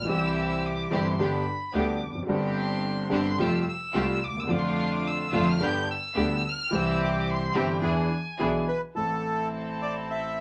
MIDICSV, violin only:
0, 0, Header, 1, 2, 480
1, 0, Start_track
1, 0, Key_signature, 0, "major"
1, 0, Tempo, 552995
1, 65, Time_signature, 4, 2, 24, 8
1, 6304, Tempo, 564440
1, 8976, End_track
2, 0, Start_track
2, 0, Title_t, "Violin"
2, 0, Program_c, 0, 40
2, 84, Note_on_c, 0, 88, 97
2, 301, Note_off_c, 0, 88, 0
2, 339, Note_on_c, 0, 88, 80
2, 576, Note_on_c, 0, 86, 81
2, 589, Note_off_c, 0, 88, 0
2, 821, Note_on_c, 0, 84, 72
2, 834, Note_off_c, 0, 86, 0
2, 1069, Note_on_c, 0, 83, 83
2, 1082, Note_off_c, 0, 84, 0
2, 1531, Note_off_c, 0, 83, 0
2, 1539, Note_on_c, 0, 86, 65
2, 1860, Note_off_c, 0, 86, 0
2, 2249, Note_on_c, 0, 84, 89
2, 2682, Note_off_c, 0, 84, 0
2, 2728, Note_on_c, 0, 84, 88
2, 2960, Note_on_c, 0, 88, 91
2, 2974, Note_off_c, 0, 84, 0
2, 3191, Note_off_c, 0, 88, 0
2, 3203, Note_on_c, 0, 88, 95
2, 3681, Note_on_c, 0, 86, 106
2, 3694, Note_off_c, 0, 88, 0
2, 3819, Note_on_c, 0, 88, 76
2, 3832, Note_off_c, 0, 86, 0
2, 3909, Note_on_c, 0, 86, 86
2, 3922, Note_off_c, 0, 88, 0
2, 3983, Note_on_c, 0, 84, 80
2, 3996, Note_off_c, 0, 86, 0
2, 4070, Note_on_c, 0, 86, 90
2, 4083, Note_off_c, 0, 84, 0
2, 4167, Note_on_c, 0, 84, 97
2, 4180, Note_off_c, 0, 86, 0
2, 4275, Note_off_c, 0, 84, 0
2, 4291, Note_on_c, 0, 86, 97
2, 4407, Note_on_c, 0, 88, 94
2, 4420, Note_off_c, 0, 86, 0
2, 4766, Note_on_c, 0, 89, 105
2, 4779, Note_off_c, 0, 88, 0
2, 4894, Note_on_c, 0, 91, 105
2, 4907, Note_off_c, 0, 89, 0
2, 5119, Note_off_c, 0, 91, 0
2, 5130, Note_on_c, 0, 88, 99
2, 5631, Note_on_c, 0, 89, 105
2, 5644, Note_off_c, 0, 88, 0
2, 5858, Note_on_c, 0, 88, 100
2, 5871, Note_off_c, 0, 89, 0
2, 6081, Note_off_c, 0, 88, 0
2, 6100, Note_on_c, 0, 86, 78
2, 6337, Note_on_c, 0, 84, 89
2, 6350, Note_off_c, 0, 86, 0
2, 6570, Note_on_c, 0, 79, 78
2, 6583, Note_off_c, 0, 84, 0
2, 6806, Note_on_c, 0, 80, 76
2, 6819, Note_off_c, 0, 79, 0
2, 7522, Note_off_c, 0, 80, 0
2, 8976, End_track
0, 0, End_of_file